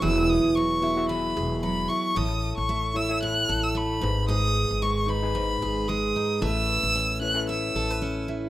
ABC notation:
X:1
M:4/4
L:1/16
Q:"Swing 16ths" 1/4=113
K:Alyd
V:1 name="Violin"
e'2 d'2 c'4 b4 b2 c'2 | d'3 c'3 e'2 f'3 e' b4 | d'4 c'2 b6 d'4 | e'6 f'2 e'6 z2 |]
V:2 name="Reed electric piano"
[B,EFGe]4 z2 [B,EFGe] [B,EFGe]4- [B,EFGe] z4 | [EAc]4 z2 [EAc] [EAc]4- [EAc] z2 [DGB]2- | [DGB]4 z2 [DGB] [DGB]4- [DGB] z4 | [CEABe]4 z2 [CEABc] [CEABe]4- [CEABe] z4 |]
V:3 name="Steel-string acoustic guitar"
[E,G]4 F,2 E2 E,2 G2 F,2 E2 | [A,,A]4 A,2 E2 A,,2 A2 A,2 G,,2 | [G,,G]4 G,2 D2 G,,2 G2 G,2 D2 | [A,B]4 C2 E2 A,2 A B C2 E2 |]
V:4 name="Upright bass" clef=bass
E,,,3 E,,,6- E,,, E,,,4 z2 | A,,,3 A,,,6- A,,, A,,,4 G,,,2- | G,,,3 G,,,6- G,,, G,,,4 z2 | A,,,3 A,,,6- A,,, A,,,6 |]